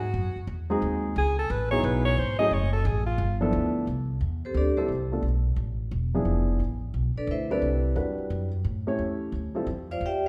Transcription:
Already playing: G#2 F#4
0.14 F#2
0.36 muted upright bass stroke
0.47 E2
0.70 G#3 C4 D#4 F#4 G#4
0.82 D#2
1.16 C#2 G#4
1.39 A4
1.50 A1 B4
1.71 F#3 B3 D#4 E4 G#4 C#5
1.83 B1 B4
2.05 C#5
2.17 G#1 C5
2.38 F#3 A3 C#4 E4 G#4 D#5
2.51 F#1 C#5
2.73 A4
2.85 A1 G#4
3.06 F4
3.18 G1
3.41 F3 B3 D4 E4 A4
3.53 D2
3.87 C2
4.21 E2
4.45 C4 G4 A4 C5
4.54 D2 D4 G4 A4 D5
4.77 G3 C4 D4 E4 G4 A4 C5
4.88 C2
5.12 A3 B3 D4 F4 A4
5.23 B1
5.56 A1
5.91 E1
6.14 F3 B3 D4 E4 G#4
6.25 F1
6.60 A1
6.94 B1
7.16 D4 A4 B4 D5, muted upright bass stroke
7.27 D2 E4 C5 E5
7.31 B4
7.50 G3 C4 D4 E4 A4 B4 D5
7.62 C2
7.95 E2 G3 D4 E4 F#4 B4
8.18 muted upright bass stroke
8.30 F#2
8.64 A2
8.87 A3 C#4 E4 G4 C#5
8.99 E2
9.32 D2
9.55 G3 C4 E4 F4 A4
9.67 F2
9.91 F4 C5 D5 F5
10.01 E2
10.06 G4 D5 E5 G5

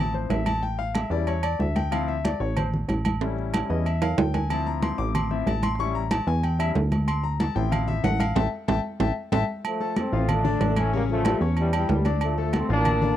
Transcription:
Already playing: A1 F3 C4 E4
0.00 A5
0.14 C5, high conga
0.30 A1 E5, high conga, low timbale, low agogo
0.46 A5, high conga, low agogo
0.63 G5, high conga
0.79 F5, high conga
0.95 E5, high conga, low agogo
1.10 E2 G3 C#4 E4 D5, high conga
1.27 C#5, high conga, low agogo
1.43 D5, high conga, low agogo
1.59 D2 E5, high conga
1.76 G5, high conga, low agogo
1.91 F3 C4 E4 F5, high conga, low agogo
2.08 E5, high conga
2.25 D5, high conga, low agogo
2.40 A1 C#5
2.57 C5, high conga, low conga, low agogo
2.74 high conga, low conga
2.89 A1, high conga, low agogo
3.05 high conga, low agogo
3.21 G3 C#4 E4, high conga, high timbale
3.39 high conga
3.54 high conga, low agogo
3.69 E2 G3 C#4 E4 D#5, high conga
3.86 E5, high conga, low agogo
4.02 F5, high conga, low timbale, low agogo
4.18 D2 G5, high conga, low timbale
4.34 G#5, high conga, low timbale, low agogo
4.50 F3 C4 E4 A5, high conga, low agogo
4.67 A#5, high conga
4.82 C6, high conga, low agogo
4.98 A1 D6
5.15 C6, high conga, low conga, low agogo
5.31 F3 C4 E4 E5, high conga
5.46 A1 A5, high conga, low agogo
5.63 C6, high conga, low agogo
5.75 G3 C6, high conga
5.80 C#4 E4 C#6
5.95 A#5, high conga
6.11 A5, high conga, low agogo
6.27 E2 G#5, high conga
6.43 G5, high conga, low agogo
6.59 G3 C#4 E4 E5, high conga, low agogo
6.75 D2, high conga, low timbale
6.92 high conga, low agogo
7.08 C6, high conga, low agogo
7.24 A#5, high conga
7.40 A5, high conga, low agogo
7.55 A1 F3 C4 E4 G5
7.72 F5, high conga, low conga, low agogo
7.88 E5, high conga, low conga
8.04 A1 F#5, high conga, low timbale, low agogo
8.20 F5, high conga, low agogo
8.36 A1 E5 G5 A5, high conga, high timbale
8.68 A1 E5 G5 A5, high conga, high timbale
9.00 A1 E5 G5 A5, high conga, high timbale
9.32 A1 E5 G5 A5, high conga, high timbale
9.64 F3 A3, high conga, low agogo
9.80 A3 A4 A5, high conga
9.96 A3 C4, high conga, low agogo
10.12 A1 F3 F4 F5
10.29 A3 D4, high conga, low conga, low agogo
10.44 D3 D4 D5, high conga, low conga
10.61 A1, high conga, low timbale, low agogo
10.76 E3 A3 C#4 E4 E5, high conga, low agogo
10.93 C#3 G3 A#3 C#4 C#5, high conga
11.10 F3 A3, high conga
11.25 G3 G4 G5, high conga, low agogo
11.41 E2 C#4 C#5 C#6, high conga
11.57 E3 G3, high conga, low agogo
11.73 E3 G3 G4 G5, high conga, low agogo
11.89 D2, high conga, low timbale
12.05 D4 D5 D6, high conga, low agogo
12.21 F3 A3, high conga, low agogo
12.38 A3 A4 A5, high conga
12.53 A3 C4, high conga, low agogo
12.69 A1 F3 A#3 D4 F4 F5
12.85 high conga, low conga, low agogo
13.01 D3 D4 D5, high conga, low conga

